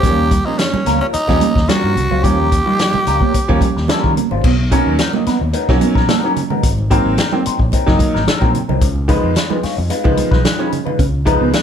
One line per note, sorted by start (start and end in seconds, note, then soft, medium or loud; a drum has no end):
0.00 0.38 D#2 loud
0.00 0.21 F3 medium
0.00 0.25 G3 medium
0.00 0.21 G3 medium
0.00 0.26 C#4 medium
0.00 0.26 F4 medium
0.00 0.47 G4 loud
0.00 kick loud
0.00 closed hi-hat medium
0.04 0.14 F#3 medium
0.04 0.21 A#3 medium
0.04 0.21 C#4 loud
0.04 0.26 A#4 medium
0.31 0.42 G3 medium
0.31 0.38 A#3 soft
0.31 0.38 C#4 soft
0.31 muted clean electric guitar stroke medium
0.31 kick medium
0.31 closed hi-hat medium
0.45 0.95 F3 medium
0.45 0.95 G3 medium
0.45 0.57 G3 medium
0.45 0.95 A#3 medium
0.45 0.58 C#4 soft
0.45 0.96 C#4 medium
0.45 0.60 D#4 loud
0.45 0.58 F4 medium
0.45 0.59 C5 medium
0.58 1.00 C#4 medium
0.58 muted clean electric guitar stroke soft
0.58 snare loud
0.58 closed hi-hat medium
0.58 muted conga soft
0.73 0.83 G3 medium
0.73 muted clean electric guitar stroke soft
0.73 muted fingered electric bass stroke soft
0.73 muted conga soft
0.73 high conga medium
0.86 0.98 C#2 medium
0.86 1.01 G3 soft
0.86 0.97 A#3 medium
0.86 1.01 C#4 medium
0.86 1.00 F4 medium
0.86 1.00 A#4 medium
0.86 snare soft
0.86 closed hi-hat medium
1.01 1.12 G3 soft
1.01 1.07 C#4 medium
1.01 1.13 C#4 medium
1.01 1.13 F4 medium
1.01 1.13 A#4 medium
1.13 1.70 D#4 loud
1.13 muted clean electric guitar stroke soft
1.13 muted fingered electric bass stroke medium
1.13 closed hi-hat medium
1.28 1.39 D#2 medium
1.28 1.44 F3 loud
1.28 1.44 G3 medium
1.28 1.40 G3 medium
1.28 1.44 A#3 medium
1.28 1.44 C#4 loud
1.28 1.40 C#4 medium
1.28 1.41 F4 medium
1.28 1.41 A#4 medium
1.28 kick medium
1.28 snare soft
1.28 muted conga soft
1.41 1.52 A#3 medium
1.41 muted clean electric guitar stroke soft
1.41 closed hi-hat medium
1.41 high conga medium
1.55 1.67 D#2 medium
1.55 1.62 A#3 soft
1.55 1.62 D#4 soft
1.55 muted clean electric guitar stroke soft
1.55 kick medium
1.55 snare soft
1.68 1.94 F3 medium
1.68 1.91 G3 medium
1.68 1.94 G3 medium
1.68 1.80 G3 medium
1.68 1.94 A#3 medium
1.68 1.91 C#4 medium
1.68 1.94 C#4 medium
1.68 1.91 F4 medium
1.68 2.25 F#4 loud
1.68 1.91 A#4 medium
1.68 snare loud
1.68 closed hi-hat loud
1.68 high conga medium
1.84 1.94 G2 medium
1.96 2.08 C2 medium
1.96 muted clean electric guitar stroke soft
1.96 closed hi-hat medium
1.96 low conga medium
2.10 2.22 C#2 medium
2.10 2.21 F#3 medium
2.10 2.23 G3 soft
2.10 2.17 A#3 soft
2.10 2.17 C#4 soft
2.10 2.23 C#4 medium
2.10 2.24 F4 medium
2.10 2.25 C5 medium
2.10 low conga medium
2.23 2.58 D#2 loud
2.23 2.41 F3 medium
2.23 2.41 G3 medium
2.23 2.46 G3 medium
2.23 2.35 G3 medium
2.23 2.41 A#3 medium
2.23 2.41 C#4 loud
2.23 2.46 C#4 medium
2.23 2.47 F4 medium
2.23 4.16 G4 loud
2.23 2.47 A#4 loud
2.23 kick loud
2.23 closed hi-hat medium
2.51 2.58 A#3 soft
2.51 2.59 C#4 soft
2.51 muted clean electric guitar stroke medium
2.51 kick medium
2.51 closed hi-hat medium
2.65 3.15 F3 medium
2.65 3.15 G3 medium
2.65 2.76 G3 medium
2.65 2.78 G3 soft
2.65 3.15 A#3 medium
2.65 2.78 C#4 medium
2.65 3.15 D#4 medium
2.65 2.78 F4 medium
2.65 2.80 C5 medium
2.79 2.90 F#3 medium
2.79 muted clean electric guitar stroke soft
2.79 snare loud
2.79 closed hi-hat medium
2.94 muted clean electric guitar stroke soft
2.94 muted fingered electric bass stroke soft
2.94 high conga medium
3.06 3.19 C#2 medium
3.06 3.22 G3 medium
3.06 3.21 C#4 medium
3.06 3.21 F4 medium
3.06 3.20 A#4 medium
3.06 closed hi-hat medium
3.21 3.34 G3 medium
3.21 3.31 A#3 medium
3.21 3.34 C#4 medium
3.21 3.35 F4 medium
3.21 3.35 A#4 medium
3.21 kick medium
3.33 muted fingered electric bass stroke medium
3.33 muted clean electric guitar stroke soft
3.33 kick medium
3.33 closed hi-hat medium
3.33 muted conga soft
3.48 3.60 D#2 medium
3.48 3.64 F3 loud
3.48 3.64 G3 loud
3.48 3.61 G3 medium
3.48 3.64 A#3 loud
3.48 3.64 C#4 loud
3.48 3.61 C#4 medium
3.48 3.61 F4 medium
3.48 3.62 A#4 medium
3.48 kick medium
3.61 3.72 G3 medium
3.61 muted clean electric guitar stroke soft
3.61 kick loud
3.61 closed hi-hat medium
3.61 high conga medium
3.75 3.87 D#2 medium
3.75 3.82 A#3 soft
3.75 3.82 D#4 soft
3.75 muted clean electric guitar stroke soft
3.75 snare soft
3.88 4.13 F3 medium
3.88 4.14 G3 medium
3.88 4.11 G3 medium
3.88 4.14 A#3 medium
3.88 4.14 C#4 medium
3.88 4.11 C#4 medium
3.88 4.12 F4 loud
3.88 4.12 A#4 loud
3.88 snare loud
3.88 closed hi-hat medium
3.88 muted conga soft
3.88 high conga medium
4.04 4.14 D#3 loud
4.04 kick medium
4.17 4.27 A#3 medium
4.17 muted clean electric guitar stroke soft
4.17 closed hi-hat medium
4.17 low conga medium
4.31 4.42 G#1 medium
4.31 4.48 G3 soft
4.31 4.37 A#3 soft
4.31 4.37 C#4 soft
4.31 4.48 C#4 medium
4.31 4.48 F4 medium
4.31 4.48 C5 medium
4.31 low conga medium
4.44 4.79 B1 loud
4.44 4.55 B3 medium
4.44 kick loud
4.44 crash medium
4.59 muted clean electric guitar stroke soft
4.71 4.96 D#3 loud
4.71 4.96 F#3 loud
4.71 4.93 F#3 medium
4.71 4.96 A#3 medium
4.71 4.82 A#3 medium
4.71 4.94 B3 loud
4.71 4.97 C#4 loud
4.71 4.94 D#4 loud
4.71 4.94 A#4 loud
4.71 kick loud
4.71 closed hi-hat medium
4.87 4.97 D#2 medium
4.98 5.21 F#3 medium
4.98 5.13 B3 medium
4.98 5.12 D#4 medium
4.98 5.12 A#4 medium
4.98 muted clean electric guitar stroke soft
4.98 snare loud
4.98 closed hi-hat medium
4.98 muted conga soft
5.13 5.21 D#3 medium
5.13 5.21 F#3 medium
5.13 5.23 A#3 medium
5.13 5.21 A#3 medium
5.13 5.21 D#4 loud
5.13 muted clean electric guitar stroke soft
5.13 muted conga soft
5.13 high conga medium
5.26 5.44 F#3 medium
5.26 5.33 A#3 soft
5.26 5.41 B3 medium
5.26 5.37 B3 medium
5.26 5.34 C#4 soft
5.26 5.40 D#4 medium
5.26 5.41 B4 medium
5.26 muted fingered electric bass stroke soft
5.26 snare soft
5.26 closed hi-hat medium
5.41 5.52 D#2 medium
5.41 muted clean electric guitar stroke soft
5.53 5.75 F#3 medium
5.53 5.61 A#3 soft
5.53 5.76 B3 medium
5.53 5.61 C#4 soft
5.53 5.76 D#4 medium
5.53 5.76 A#4 loud
5.53 closed hi-hat medium
5.53 muted conga soft
5.68 5.79 B1 loud
5.68 6.01 D#3 loud
5.68 6.01 F#3 loud
5.68 6.01 A#3 loud
5.68 6.02 C#4 loud
5.68 kick loud
5.68 snare soft
5.81 5.91 B3 medium
5.81 muted clean electric guitar stroke soft
5.81 closed hi-hat medium
5.81 high conga medium
5.95 6.06 A#1 medium
5.95 6.07 F#3 medium
5.95 6.07 B3 medium
5.95 6.08 D#4 medium
5.95 6.08 A#4 medium
5.95 kick medium
5.95 snare soft
6.08 6.30 F#3 medium
6.08 6.19 A#3 loud
6.08 6.30 B3 medium
6.08 6.31 D#4 loud
6.08 6.31 A#4 loud
6.08 snare loud
6.08 closed hi-hat medium
6.08 high conga medium
6.23 6.39 D#3 medium
6.23 6.39 F#3 medium
6.23 6.39 A#3 medium
6.23 6.39 C#4 medium
6.23 muted clean electric guitar stroke soft
6.23 muted conga soft
6.36 muted clean electric guitar stroke soft
6.36 closed hi-hat medium
6.36 low conga medium
6.50 6.67 F#3 medium
6.50 6.60 G#3 medium
6.50 6.56 A#3 soft
6.50 6.67 B3 medium
6.50 6.57 C#4 soft
6.50 6.67 D#4 medium
6.50 6.67 A#4 medium
6.50 low conga medium
6.63 6.98 G#1 loud
6.63 kick loud
6.63 closed hi-hat loud
6.63 muted conga soft
6.78 muted conga soft
6.90 7.15 D#3 loud
6.90 7.12 F#3 medium
6.90 7.15 F#3 loud
6.90 7.15 A#3 loud
6.90 7.15 C4 loud
6.90 7.13 C4 medium
6.90 7.13 D#4 loud
6.90 7.13 A#4 loud
6.90 kick loud
6.90 closed hi-hat medium
7.06 7.16 G#1 medium
7.17 7.40 F#3 medium
7.17 7.32 C4 medium
7.17 7.32 D#4 medium
7.17 7.31 A#4 medium
7.17 snare loud
7.17 closed hi-hat medium
7.17 muted conga soft
7.32 7.40 D#3 medium
7.32 7.40 F#3 medium
7.32 7.40 A#3 medium
7.32 7.40 C4 loud
7.32 muted clean electric guitar stroke soft
7.32 high conga medium
7.46 7.63 F#3 medium
7.46 7.52 A#3 soft
7.46 7.59 C4 medium
7.46 7.53 C4 soft
7.46 7.59 D#4 medium
7.46 7.59 C5 medium
7.46 muted fingered electric bass stroke soft
7.46 closed hi-hat medium
7.59 7.70 A#1 medium
7.59 muted clean electric guitar stroke soft
7.59 kick medium
7.72 7.94 F#3 medium
7.72 7.79 A#3 soft
7.72 7.80 C4 soft
7.72 7.95 C4 medium
7.72 7.95 D#4 medium
7.72 7.95 A#4 medium
7.72 kick medium
7.72 closed hi-hat medium
7.72 muted conga soft
7.86 7.98 F#1 medium
7.86 8.19 D#3 loud
7.86 8.19 F#3 loud
7.86 8.19 A#3 loud
7.86 8.19 D#4 loud
7.86 kick loud
7.86 snare soft
7.99 kick loud
7.99 closed hi-hat medium
7.99 high conga medium
8.14 8.26 G#1 medium
8.14 8.26 F#3 medium
8.14 8.26 C4 medium
8.14 8.27 D#4 medium
8.14 8.28 A#4 medium
8.14 snare soft
8.26 8.49 F#3 medium
8.26 8.49 C4 medium
8.26 8.50 D#4 medium
8.26 8.50 A#4 medium
8.26 muted fingered electric bass stroke soft
8.26 snare loud
8.26 closed hi-hat medium
8.26 high conga medium
8.41 8.52 A#1 medium
8.41 8.57 D#3 medium
8.41 8.57 F#3 medium
8.41 8.57 A#3 medium
8.41 8.57 C4 medium
8.41 kick medium
8.41 muted conga soft
8.55 muted clean electric guitar stroke soft
8.55 closed hi-hat medium
8.55 low conga medium
8.68 8.82 C2 medium
8.68 8.85 F#3 medium
8.68 8.75 A#3 soft
8.68 8.85 C4 medium
8.68 8.75 D#4 soft
8.68 8.85 D#4 medium
8.68 8.85 A#4 medium
8.68 low conga medium
8.81 9.16 C#2 loud
8.81 kick loud
8.81 closed hi-hat loud
8.81 muted conga soft
8.96 muted conga soft
9.08 9.33 D#3 loud
9.08 9.33 F3 loud
9.08 9.33 G#3 loud
9.08 9.31 G#3 medium
9.08 9.33 B3 loud
9.08 9.31 D#4 loud
9.08 9.31 F4 loud
9.08 9.31 B4 loud
9.08 kick medium
9.08 closed hi-hat medium
9.24 9.34 F2 medium
9.35 9.58 G#3 medium
9.35 9.50 D#4 medium
9.35 9.50 F4 medium
9.35 9.49 B4 medium
9.35 snare loud
9.35 closed hi-hat medium
9.35 muted conga soft
9.50 9.58 D#3 medium
9.50 9.58 F3 medium
9.50 9.58 G#3 medium
9.50 9.58 B3 loud
9.50 muted clean electric guitar stroke soft
9.50 high conga medium
9.63 9.70 G#3 soft
9.63 9.80 G#3 medium
9.63 9.70 B3 soft
9.63 9.77 D#4 medium
9.63 9.77 F4 medium
9.63 9.77 C#5 medium
9.63 muted fingered electric bass stroke soft
9.63 snare soft
9.63 open hi-hat medium
9.77 9.88 F2 loud
9.77 muted clean electric guitar stroke soft
9.90 10.12 G#3 medium
9.90 9.97 G#3 soft
9.90 9.97 C#4 soft
9.90 10.12 D#4 medium
9.90 10.13 F4 loud
9.90 10.13 B4 medium
9.90 closed hi-hat medium
9.90 muted conga soft
10.04 10.16 C#2 medium
10.04 10.37 D#3 loud
10.04 10.37 F3 loud
10.04 10.37 G#3 loud
10.04 10.37 B3 loud
10.04 kick loud
10.04 muted conga soft
10.17 muted clean electric guitar stroke soft
10.17 closed hi-hat medium
10.17 high conga medium
10.31 10.42 B1 medium
10.31 10.43 G#3 medium
10.31 10.44 D#4 medium
10.31 10.44 F4 medium
10.31 10.44 B4 medium
10.31 kick loud
10.31 snare soft
10.44 10.67 G#3 medium
10.44 10.67 D#4 medium
10.44 10.67 F4 medium
10.44 10.67 B4 medium
10.44 snare loud
10.44 closed hi-hat loud
10.44 high conga medium
10.59 10.75 D#3 medium
10.59 10.75 F3 medium
10.59 10.75 G#3 medium
10.59 10.75 C#4 loud
10.59 muted conga soft
10.71 muted clean electric guitar stroke soft
10.71 closed hi-hat medium
10.71 low conga medium
10.85 10.92 G#3 soft
10.85 11.03 G#3 medium
10.85 10.93 B3 soft
10.85 11.03 D#4 medium
10.85 11.03 F4 medium
10.85 11.02 B4 medium
10.85 low conga medium
10.99 11.33 C#2 loud
10.99 11.10 C#4 medium
10.99 kick loud
10.99 closed hi-hat medium
10.99 muted conga soft
11.25 11.51 D#3 loud
11.25 11.51 F3 loud
11.25 11.48 G#3 medium
11.25 11.51 G#3 loud
11.25 11.51 B3 loud
11.25 11.48 D#4 medium
11.25 11.48 F4 medium
11.25 11.49 B4 loud
11.25 muted clean electric guitar stroke soft
11.25 kick loud
11.25 closed hi-hat medium
11.41 11.52 C#2 medium
11.41 11.50 B3 medium
11.53 11.62 G#3 loud
11.53 11.62 G#3 medium
11.53 11.62 D#4 loud
11.53 11.62 F4 loud
11.53 11.62 B4 loud
11.53 snare loud
11.53 closed hi-hat medium
11.53 muted conga soft